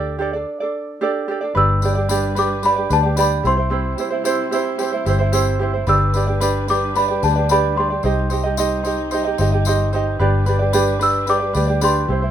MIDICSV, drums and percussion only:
0, 0, Header, 1, 2, 480
1, 0, Start_track
1, 0, Key_signature, 1, "major"
1, 0, Tempo, 540541
1, 1381, Time_signature, 4, 2, 24, 8
1, 10930, End_track
2, 0, Start_track
2, 0, Title_t, "Drums"
2, 1617, Note_on_c, 9, 54, 48
2, 1706, Note_off_c, 9, 54, 0
2, 1858, Note_on_c, 9, 54, 82
2, 1947, Note_off_c, 9, 54, 0
2, 2099, Note_on_c, 9, 54, 50
2, 2188, Note_off_c, 9, 54, 0
2, 2335, Note_on_c, 9, 54, 50
2, 2423, Note_off_c, 9, 54, 0
2, 2579, Note_on_c, 9, 54, 50
2, 2668, Note_off_c, 9, 54, 0
2, 2814, Note_on_c, 9, 54, 76
2, 2903, Note_off_c, 9, 54, 0
2, 3064, Note_on_c, 9, 54, 28
2, 3153, Note_off_c, 9, 54, 0
2, 3535, Note_on_c, 9, 54, 47
2, 3624, Note_off_c, 9, 54, 0
2, 3776, Note_on_c, 9, 54, 81
2, 3864, Note_off_c, 9, 54, 0
2, 4017, Note_on_c, 9, 54, 51
2, 4106, Note_off_c, 9, 54, 0
2, 4252, Note_on_c, 9, 54, 51
2, 4341, Note_off_c, 9, 54, 0
2, 4496, Note_on_c, 9, 54, 50
2, 4585, Note_off_c, 9, 54, 0
2, 4732, Note_on_c, 9, 54, 77
2, 4820, Note_off_c, 9, 54, 0
2, 5210, Note_on_c, 9, 54, 31
2, 5299, Note_off_c, 9, 54, 0
2, 5450, Note_on_c, 9, 54, 47
2, 5538, Note_off_c, 9, 54, 0
2, 5695, Note_on_c, 9, 54, 84
2, 5784, Note_off_c, 9, 54, 0
2, 5934, Note_on_c, 9, 54, 49
2, 6023, Note_off_c, 9, 54, 0
2, 6176, Note_on_c, 9, 54, 50
2, 6265, Note_off_c, 9, 54, 0
2, 6418, Note_on_c, 9, 54, 47
2, 6507, Note_off_c, 9, 54, 0
2, 6653, Note_on_c, 9, 54, 72
2, 6742, Note_off_c, 9, 54, 0
2, 7129, Note_on_c, 9, 54, 31
2, 7218, Note_off_c, 9, 54, 0
2, 7370, Note_on_c, 9, 54, 46
2, 7459, Note_off_c, 9, 54, 0
2, 7613, Note_on_c, 9, 54, 82
2, 7702, Note_off_c, 9, 54, 0
2, 7855, Note_on_c, 9, 54, 52
2, 7944, Note_off_c, 9, 54, 0
2, 8090, Note_on_c, 9, 54, 51
2, 8179, Note_off_c, 9, 54, 0
2, 8332, Note_on_c, 9, 54, 52
2, 8421, Note_off_c, 9, 54, 0
2, 8569, Note_on_c, 9, 54, 70
2, 8658, Note_off_c, 9, 54, 0
2, 8816, Note_on_c, 9, 54, 27
2, 8905, Note_off_c, 9, 54, 0
2, 9290, Note_on_c, 9, 54, 44
2, 9379, Note_off_c, 9, 54, 0
2, 9531, Note_on_c, 9, 54, 83
2, 9620, Note_off_c, 9, 54, 0
2, 9775, Note_on_c, 9, 54, 52
2, 9864, Note_off_c, 9, 54, 0
2, 10008, Note_on_c, 9, 54, 53
2, 10097, Note_off_c, 9, 54, 0
2, 10252, Note_on_c, 9, 54, 48
2, 10341, Note_off_c, 9, 54, 0
2, 10490, Note_on_c, 9, 54, 73
2, 10579, Note_off_c, 9, 54, 0
2, 10930, End_track
0, 0, End_of_file